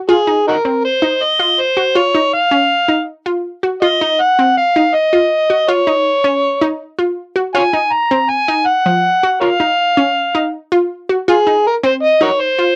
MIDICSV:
0, 0, Header, 1, 3, 480
1, 0, Start_track
1, 0, Tempo, 372902
1, 122, Time_signature, 5, 2, 24, 8
1, 16420, End_track
2, 0, Start_track
2, 0, Title_t, "Harmonica"
2, 0, Program_c, 0, 22
2, 131, Note_on_c, 0, 68, 70
2, 573, Note_off_c, 0, 68, 0
2, 616, Note_on_c, 0, 63, 50
2, 616, Note_on_c, 0, 66, 50
2, 616, Note_on_c, 0, 70, 72
2, 705, Note_off_c, 0, 66, 0
2, 712, Note_off_c, 0, 63, 0
2, 1056, Note_off_c, 0, 70, 0
2, 1094, Note_on_c, 0, 72, 89
2, 1581, Note_on_c, 0, 75, 90
2, 1600, Note_off_c, 0, 72, 0
2, 2056, Note_on_c, 0, 72, 83
2, 2075, Note_off_c, 0, 75, 0
2, 2532, Note_on_c, 0, 73, 91
2, 2551, Note_off_c, 0, 72, 0
2, 2996, Note_off_c, 0, 73, 0
2, 3004, Note_on_c, 0, 77, 98
2, 3912, Note_off_c, 0, 77, 0
2, 4928, Note_on_c, 0, 75, 88
2, 5412, Note_on_c, 0, 78, 100
2, 5432, Note_off_c, 0, 75, 0
2, 5879, Note_off_c, 0, 78, 0
2, 5887, Note_on_c, 0, 77, 96
2, 6362, Note_on_c, 0, 75, 93
2, 6381, Note_off_c, 0, 77, 0
2, 7325, Note_on_c, 0, 73, 83
2, 7344, Note_off_c, 0, 75, 0
2, 8764, Note_off_c, 0, 73, 0
2, 9722, Note_on_c, 0, 73, 62
2, 9722, Note_on_c, 0, 77, 62
2, 9722, Note_on_c, 0, 80, 88
2, 9799, Note_off_c, 0, 77, 0
2, 9820, Note_off_c, 0, 73, 0
2, 10195, Note_on_c, 0, 82, 99
2, 10215, Note_off_c, 0, 80, 0
2, 10677, Note_on_c, 0, 80, 91
2, 10697, Note_off_c, 0, 82, 0
2, 11148, Note_on_c, 0, 78, 86
2, 11167, Note_off_c, 0, 80, 0
2, 12100, Note_off_c, 0, 78, 0
2, 12108, Note_on_c, 0, 70, 57
2, 12108, Note_on_c, 0, 73, 57
2, 12108, Note_on_c, 0, 77, 82
2, 12211, Note_off_c, 0, 70, 0
2, 12213, Note_off_c, 0, 73, 0
2, 13504, Note_off_c, 0, 77, 0
2, 14546, Note_on_c, 0, 68, 86
2, 14981, Note_off_c, 0, 68, 0
2, 15020, Note_on_c, 0, 70, 88
2, 15124, Note_off_c, 0, 70, 0
2, 15260, Note_on_c, 0, 72, 86
2, 15364, Note_off_c, 0, 72, 0
2, 15487, Note_on_c, 0, 75, 98
2, 15707, Note_off_c, 0, 75, 0
2, 15730, Note_on_c, 0, 66, 62
2, 15730, Note_on_c, 0, 70, 62
2, 15730, Note_on_c, 0, 73, 89
2, 15819, Note_off_c, 0, 66, 0
2, 15837, Note_off_c, 0, 70, 0
2, 15969, Note_on_c, 0, 72, 88
2, 15988, Note_off_c, 0, 73, 0
2, 16420, Note_off_c, 0, 72, 0
2, 16420, End_track
3, 0, Start_track
3, 0, Title_t, "Synth arpeggio sound"
3, 0, Program_c, 1, 84
3, 112, Note_on_c, 1, 65, 92
3, 269, Note_off_c, 1, 65, 0
3, 351, Note_on_c, 1, 63, 74
3, 663, Note_off_c, 1, 63, 0
3, 836, Note_on_c, 1, 60, 77
3, 1146, Note_off_c, 1, 60, 0
3, 1315, Note_on_c, 1, 63, 76
3, 1625, Note_off_c, 1, 63, 0
3, 1793, Note_on_c, 1, 65, 69
3, 2104, Note_off_c, 1, 65, 0
3, 2272, Note_on_c, 1, 66, 68
3, 2429, Note_off_c, 1, 66, 0
3, 2513, Note_on_c, 1, 65, 86
3, 2670, Note_off_c, 1, 65, 0
3, 2759, Note_on_c, 1, 63, 74
3, 3068, Note_off_c, 1, 63, 0
3, 3234, Note_on_c, 1, 61, 81
3, 3545, Note_off_c, 1, 61, 0
3, 3713, Note_on_c, 1, 63, 75
3, 4024, Note_off_c, 1, 63, 0
3, 4197, Note_on_c, 1, 65, 70
3, 4507, Note_off_c, 1, 65, 0
3, 4675, Note_on_c, 1, 66, 66
3, 4832, Note_off_c, 1, 66, 0
3, 4916, Note_on_c, 1, 65, 83
3, 5072, Note_off_c, 1, 65, 0
3, 5166, Note_on_c, 1, 63, 74
3, 5473, Note_off_c, 1, 63, 0
3, 5646, Note_on_c, 1, 60, 80
3, 5953, Note_off_c, 1, 60, 0
3, 6126, Note_on_c, 1, 63, 76
3, 6433, Note_off_c, 1, 63, 0
3, 6599, Note_on_c, 1, 65, 77
3, 6909, Note_off_c, 1, 65, 0
3, 7077, Note_on_c, 1, 66, 72
3, 7233, Note_off_c, 1, 66, 0
3, 7316, Note_on_c, 1, 65, 89
3, 7472, Note_off_c, 1, 65, 0
3, 7555, Note_on_c, 1, 63, 73
3, 7866, Note_off_c, 1, 63, 0
3, 8032, Note_on_c, 1, 61, 78
3, 8344, Note_off_c, 1, 61, 0
3, 8513, Note_on_c, 1, 63, 83
3, 8825, Note_off_c, 1, 63, 0
3, 8993, Note_on_c, 1, 65, 74
3, 9304, Note_off_c, 1, 65, 0
3, 9471, Note_on_c, 1, 66, 73
3, 9629, Note_off_c, 1, 66, 0
3, 9715, Note_on_c, 1, 65, 92
3, 9872, Note_off_c, 1, 65, 0
3, 9956, Note_on_c, 1, 63, 77
3, 10267, Note_off_c, 1, 63, 0
3, 10441, Note_on_c, 1, 60, 79
3, 10750, Note_off_c, 1, 60, 0
3, 10920, Note_on_c, 1, 63, 80
3, 11229, Note_off_c, 1, 63, 0
3, 11400, Note_on_c, 1, 53, 75
3, 11710, Note_off_c, 1, 53, 0
3, 11885, Note_on_c, 1, 66, 74
3, 12039, Note_off_c, 1, 66, 0
3, 12120, Note_on_c, 1, 65, 91
3, 12275, Note_off_c, 1, 65, 0
3, 12357, Note_on_c, 1, 63, 71
3, 12667, Note_off_c, 1, 63, 0
3, 12837, Note_on_c, 1, 61, 83
3, 13147, Note_off_c, 1, 61, 0
3, 13319, Note_on_c, 1, 63, 82
3, 13629, Note_off_c, 1, 63, 0
3, 13797, Note_on_c, 1, 65, 83
3, 14107, Note_off_c, 1, 65, 0
3, 14280, Note_on_c, 1, 66, 69
3, 14435, Note_off_c, 1, 66, 0
3, 14521, Note_on_c, 1, 65, 95
3, 14676, Note_off_c, 1, 65, 0
3, 14761, Note_on_c, 1, 63, 70
3, 15069, Note_off_c, 1, 63, 0
3, 15234, Note_on_c, 1, 60, 87
3, 15545, Note_off_c, 1, 60, 0
3, 15715, Note_on_c, 1, 63, 81
3, 16025, Note_off_c, 1, 63, 0
3, 16201, Note_on_c, 1, 65, 74
3, 16420, Note_off_c, 1, 65, 0
3, 16420, End_track
0, 0, End_of_file